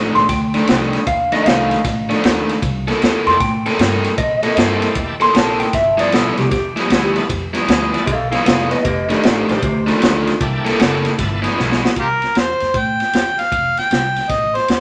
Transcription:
Already playing: overdriven electric guitar F2 D#3 A3 D4
0.15 upright bass A#1, clean electric guitar C6, snare, ride
0.29 upright bass D2, clean electric guitar G5, kick, snare, ride
0.54 overdriven electric guitar F2 D#3 A3 D4, snare, ride
0.67 upright bass C2, overdriven electric guitar F2 D#3 A3 D4, snare, ride
0.93 snare, ride
1.07 upright bass D#2, clean electric guitar F5, kick, ride
1.32 overdriven electric guitar F2 D#3 A3 D4, clean electric guitar D#5, snare, ride
1.46 upright bass C2, overdriven electric guitar F2 D#3 A3 D4, clean electric guitar F5, snare, ride
1.71 snare, ride
1.84 upright bass A1, kick, snare, ride
2.09 overdriven electric guitar F2 D#3 A3 D4, snare, ride
2.23 upright bass D#2, overdriven electric guitar F2 D#3 A3 D4, snare, ride
2.49 snare, ride
2.62 upright bass C2, kick, ride
2.88 overdriven electric guitar C3 A#3 E4 A4, snare, ride
3.01 upright bass E2, overdriven electric guitar C3 A#3 E4 A4, snare, ride
3.26 upright bass F2, tonewheel organ A#3 D4 E4 G4 A4, clean electric guitar C6, snare, ride
3.40 upright bass A2, clean electric guitar G5, kick, snare, ride
3.66 overdriven electric guitar C3 A#3 E4 A4, snare, ride
3.79 upright bass G2, overdriven electric guitar C3 A#3 E4 A4, snare, ride
4.04 snare, ride
4.18 upright bass A#2, clean electric guitar D#5, kick, ride
4.43 overdriven electric guitar C3 A#3 E4 A4, clean electric guitar D#5, snare, ride
4.56 upright bass G2, overdriven electric guitar C3 A#3 E4 A4, tonewheel organ A#3 D4 E4 G4 A4, clean electric guitar C5, snare, ride
4.82 snare, ride
4.95 upright bass E2, kick, ride
5.20 overdriven electric guitar C3 A#3 E4 A4, clean electric guitar C6, snare, ride
5.34 upright bass A#1, overdriven electric guitar C3 A#3 E4 A4, clean electric guitar A5, snare, ride
5.60 clean electric guitar G5, snare, ride
5.73 upright bass G1, clean electric guitar E5, kick, snare, ride
5.98 overdriven electric guitar G2 F3 B3 E4, clean electric guitar D5, snare, ride
6.12 upright bass B1, overdriven electric guitar G2 F3 B3 E4, clean electric guitar A4, snare, ride
6.37 upright bass C2, clean electric guitar G4, snare, ride
6.51 upright bass E2, clean electric guitar G4, kick, snare, ride
6.76 overdriven electric guitar G2 F3 B3 E4, snare, ride
6.89 upright bass D2, overdriven electric guitar G2 F3 B3 E4, snare, ride
7.15 tonewheel organ B3 D4 E4 F4 A4, snare, ride
7.29 upright bass F2, kick, ride
7.54 overdriven electric guitar G2 F3 B3 E4, snare, ride
7.68 upright bass D2, overdriven electric guitar G2 F3 B3 E4, snare, ride
7.92 tonewheel organ B3 D4 E4 F4 A4, snare, ride
8.06 upright bass B1, clean electric guitar A4 F5, kick, ride
8.31 overdriven electric guitar G2 F3 B3 E4, clean electric guitar A4 F5, snare, ride
8.45 upright bass F1, overdriven electric guitar G2 F3 B3 E4, clean electric guitar A4 F5, snare, ride
8.71 clean electric guitar B4 D#5, snare, ride
8.85 upright bass F1, clean electric guitar G4 D#5, kick, ride
9.09 overdriven electric guitar F2 D#3 A3 D4, clean electric guitar G4 D#5, snare, ride
9.23 upright bass A1, overdriven electric guitar F2 D#3 A3 D4, clean electric guitar G4 C5, snare, ride
9.49 upright bass A#1, tonewheel organ C4 D4 D#4 G4 A4, clean electric guitar G4 C5, snare, ride
9.62 upright bass D2, clean electric guitar G4 C5, kick, ride
9.87 overdriven electric guitar F2 D#3 A3 D4, clean electric guitar F4, snare, ride
10.01 upright bass D2, overdriven electric guitar F2 D#3 A3 D4, snare, ride
10.27 snare, ride
10.40 upright bass C2, tonewheel organ A#3 D4 E4 G4 A4, kick, ride
10.65 overdriven electric guitar C3 A#3 E4 A4, snare, ride
10.79 upright bass F#1, overdriven electric guitar C3 A#3 E4 A4, snare, ride
11.05 snare, ride
11.17 upright bass G1, tonewheel organ B3 D4 E4 F4 A4, kick, snare, ride
11.42 overdriven electric guitar G2 F3 B3 E4, snare, ride
11.57 upright bass B1, overdriven electric guitar G2 F3 B3 E4, snare
11.72 snare
11.85 snare
11.96 upright bass C2, harmonica F4 G4 A#4, kick, ride
12.22 snare, ride
12.35 upright bass E2, harmonica C5, snare, ride
12.60 upright bass F2, snare, ride
12.74 upright bass A2, kick, ride
12.78 harmonica G5
13.00 snare, ride
13.13 upright bass E2, snare, ride
13.39 harmonica F5, snare, ride
13.52 upright bass F1, kick, ride
13.77 harmonica G5, snare, ride
13.91 upright bass C2, snare, ride
14.16 snare, ride
14.29 upright bass A1, harmonica D#5, kick, snare, ride
14.55 harmonica C5, snare, ride
14.68 upright bass D#2, harmonica C5, snare, ride

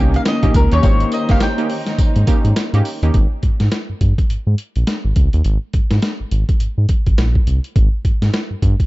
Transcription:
Already playing: analog synth bass C2, string section D#3 A#3 C#4, analog polysynth A#3 C#4 D#4 G4, grand piano A#3 C#4 D#4 G4 C#5, mandolin G5
0.14 mandolin F5, closed hi-hat
0.25 mandolin D#5, snare, closed hi-hat, tambourine
0.43 analog synth bass A#1, analog polysynth A#3 C#4 D#4 G4, kick, closed hi-hat
0.54 analog synth bass C#2, mandolin A#4, kick, closed hi-hat, tambourine
0.72 analog synth bass D#2, analog polysynth A#3 C#4 D#4 G4, mandolin C#5, closed hi-hat
0.82 analog synth bass G#1, grand piano A#3 C#4 D#4 G4 C5, string section D#4, kick, closed hi-hat, tambourine
1.00 closed hi-hat
1.12 mandolin D#5, closed hi-hat, tambourine
1.29 analog synth bass G1, analog polysynth A#3 C#4 D#4 G4, mandolin F5, kick, snare, closed hi-hat
1.40 mandolin G5, snare, closed hi-hat, tambourine
1.58 analog polysynth A#3 C#4 D#4 G4, closed hi-hat
1.70 open hi-hat
1.87 snare, closed hi-hat
1.98 kick, closed hi-hat, tambourine
2.16 analog synth bass G#2, closed hi-hat
2.27 analog polysynth A#3 C#4 D#4 G4, kick, closed hi-hat, tambourine
2.45 analog synth bass G#2, closed hi-hat
2.56 snare, closed hi-hat, tambourine
2.73 analog synth bass G#2, analog polysynth A#3 C#4 D#4 G4, closed hi-hat
2.85 open hi-hat, tambourine
3.02 analog synth bass D#2, analog polysynth A#3 C#4 D#4 G4, closed hi-hat
3.14 analog synth bass G#1, kick, closed hi-hat
3.43 analog synth bass G#2, kick, closed hi-hat
3.60 analog synth bass G#2, snare, closed hi-hat
3.71 snare, closed hi-hat
3.89 analog synth bass G2
4.01 analog synth bass G2, kick, closed hi-hat
4.18 kick, closed hi-hat
4.30 analog synth bass G#2, closed hi-hat
4.47 analog synth bass G#2
4.58 closed hi-hat
4.76 analog synth bass A#1, closed hi-hat
4.87 snare, closed hi-hat
5.05 analog synth bass G#1
5.16 analog synth bass C#2, kick, closed hi-hat
5.33 analog synth bass D#2, closed hi-hat
5.44 analog synth bass G#1, closed hi-hat
5.73 analog synth bass G#2, kick, closed hi-hat
5.91 analog synth bass G#2, snare, closed hi-hat
6.02 snare, closed hi-hat
6.20 analog synth bass G#1
6.31 analog synth bass G#1, closed hi-hat
6.49 kick, closed hi-hat
6.60 analog synth bass G#2, closed hi-hat
6.78 analog synth bass G#2
6.89 kick, closed hi-hat
7.06 analog synth bass G#1, kick, closed hi-hat
7.18 analog synth bass A#1, snare, closed hi-hat
7.35 kick
7.47 analog synth bass C2, closed hi-hat
7.64 closed hi-hat
7.76 analog synth bass G#1, kick, closed hi-hat
8.05 analog synth bass G#2, kick, closed hi-hat
8.22 analog synth bass G#2, snare, closed hi-hat
8.33 snare, closed hi-hat
8.51 analog synth bass G2
8.62 analog synth bass G2, kick, closed hi-hat
8.80 kick, closed hi-hat

